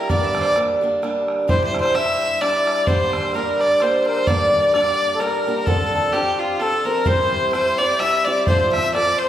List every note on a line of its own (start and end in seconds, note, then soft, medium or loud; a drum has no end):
0.00 0.10 E4 medium
0.00 0.11 A#4 medium
0.09 0.56 G2 medium
0.09 1.47 D3 medium
0.09 0.55 G3 medium
0.09 0.55 A#3 medium
0.09 0.57 D4 medium
0.09 0.57 G4 medium
0.09 0.25 D5 medium
0.09 0.24 D5 medium
0.09 bodhran medium
0.24 0.40 D5 medium
0.24 0.27 E5 soft
0.35 bodhran medium
0.40 0.41 C5 medium
0.40 0.56 D5 medium
0.45 bodhran medium
0.56 0.80 G3 medium
0.56 0.81 A#3 medium
0.56 0.82 D4 medium
0.56 0.83 G4 medium
0.56 bodhran medium
0.81 1.01 G3 medium
0.81 1.02 A#3 medium
0.81 1.03 D4 medium
0.81 1.02 G4 soft
1.02 1.48 G3 medium
1.02 1.49 A#3 soft
1.02 1.49 D4 medium
1.02 1.49 G4 medium
1.02 bodhran medium
1.28 bodhran medium
1.48 1.94 C3 medium
1.48 1.94 G3 medium
1.48 1.95 D4 medium
1.48 1.94 E4 medium
1.48 1.96 G4 medium
1.48 1.63 C5 medium
1.48 bodhran medium
1.64 1.79 C5 medium
1.74 bodhran medium
1.79 1.95 C5 medium
1.79 1.96 C5 loud
1.85 bodhran medium
1.94 2.41 G3 medium
1.94 2.41 D4 medium
1.94 2.42 E4 medium
1.94 2.42 G4 medium
1.94 2.43 E5 loud
1.94 2.38 E5 medium
1.94 bodhran medium
2.41 2.88 G3 soft
2.41 2.88 D4 medium
2.41 2.88 E4 medium
2.41 2.89 G4 medium
2.41 2.55 D5 medium
2.41 2.89 D5 medium
2.41 bodhran medium
2.57 2.70 D5 medium
2.67 bodhran medium
2.71 2.88 D5 medium
2.87 3.34 G2 medium
2.87 4.28 D3 medium
2.87 3.34 G3 medium
2.87 3.35 A#3 medium
2.87 3.36 D4 medium
2.87 3.36 G4 medium
2.87 3.11 C5 medium
2.87 3.37 C5 medium
2.87 bodhran medium
3.13 3.35 C5 medium
3.13 bodhran medium
3.23 bodhran soft
3.33 3.80 G3 medium
3.33 3.81 A#3 medium
3.33 3.82 D4 medium
3.33 3.82 G4 medium
3.33 3.59 A#4 medium
3.33 3.62 A#4 medium
3.33 bodhran medium
3.59 3.79 D5 medium
3.59 3.83 D5 medium
3.59 bodhran soft
3.80 4.27 G3 soft
3.80 4.27 A#3 medium
3.80 4.29 D4 medium
3.80 4.28 G4 medium
3.80 4.07 C5 medium
3.80 4.05 C5 medium
3.80 bodhran medium
4.06 4.26 A#4 medium
4.06 4.29 C5 medium
4.06 bodhran soft
4.17 bodhran soft
4.27 4.74 G2 medium
4.27 5.66 D3 medium
4.27 4.73 G3 medium
4.27 4.73 A#3 medium
4.27 4.75 D4 medium
4.27 4.74 G4 medium
4.27 4.72 D5 medium
4.27 4.73 D5 medium
4.27 bodhran medium
4.41 bodhran soft
4.73 5.19 G3 medium
4.73 5.20 A#3 medium
4.73 5.21 D4 medium
4.73 5.21 G4 medium
4.73 5.22 D5 loud
4.73 5.12 D5 medium
4.73 bodhran medium
5.15 5.20 A4 medium
5.20 5.45 G3 medium
5.20 5.46 A#3 medium
5.20 5.47 D4 medium
5.20 5.47 G4 medium
5.20 5.67 A#4 medium
5.20 5.61 A#4 medium
5.20 bodhran medium
5.46 5.66 G3 medium
5.46 5.67 A#3 soft
5.46 5.66 D4 medium
5.46 5.68 G4 medium
5.63 6.13 D3 medium
5.63 6.11 F3 medium
5.63 6.14 A4 medium
5.63 5.67 A#4 medium
5.67 6.13 C4 medium
5.67 6.13 D4 medium
5.67 5.93 A4 medium
5.67 6.14 A4 medium
5.67 bodhran medium
5.80 bodhran soft
5.94 6.13 A4 medium
6.12 6.59 F3 medium
6.12 6.60 C4 medium
6.12 6.60 D4 medium
6.12 6.41 G4 medium
6.12 6.57 G4 medium
6.12 6.61 A4 medium
6.12 bodhran medium
6.39 6.61 F4 medium
6.60 6.83 F3 soft
6.60 6.84 C4 medium
6.60 6.85 D4 medium
6.60 6.86 A4 medium
6.60 6.84 A4 medium
6.60 6.85 A4 medium
6.60 bodhran medium
6.85 7.05 F3 medium
6.85 7.05 C4 medium
6.85 7.06 D4 medium
6.85 7.06 A4 medium
6.85 7.08 A#4 medium
7.05 7.53 E3 medium
7.05 7.52 G3 medium
7.05 7.53 C4 medium
7.05 7.53 E4 medium
7.05 7.53 G4 medium
7.05 7.52 C5 medium
7.05 7.53 C5 medium
7.05 bodhran medium
7.19 bodhran soft
7.52 7.78 G3 medium
7.52 7.79 C4 medium
7.52 7.79 E4 medium
7.52 7.80 G4 medium
7.52 7.80 C5 loud
7.52 7.78 C5 medium
7.52 bodhran medium
7.78 7.98 G3 soft
7.78 7.99 C4 medium
7.78 8.00 E4 soft
7.78 8.01 G4 medium
7.78 8.01 D5 loud
7.78 8.01 D5 medium
7.99 8.25 G3 medium
7.99 8.25 C4 medium
7.99 8.26 E4 medium
7.99 8.27 G4 medium
7.99 8.27 E5 loud
7.99 8.27 E5 medium
7.99 bodhran medium
8.25 8.47 G3 medium
8.25 8.47 C4 medium
8.25 8.47 E4 medium
8.25 8.48 G4 medium
8.25 8.47 D5 medium
8.25 8.46 D5 loud
8.47 8.93 F3 medium
8.47 8.93 C4 medium
8.47 8.94 F4 medium
8.47 8.94 A4 medium
8.47 8.71 C5 medium
8.47 8.73 C5 medium
8.47 bodhran medium
8.60 bodhran soft
8.72 8.92 E5 loud
8.72 8.92 E5 medium
8.72 bodhran medium
8.93 9.29 F3 medium
8.93 9.29 C4 medium
8.93 9.29 F4 medium
8.93 9.29 A4 medium
8.93 9.20 D5 medium
8.93 9.20 D5 loud
8.93 bodhran medium
9.18 9.29 C5 medium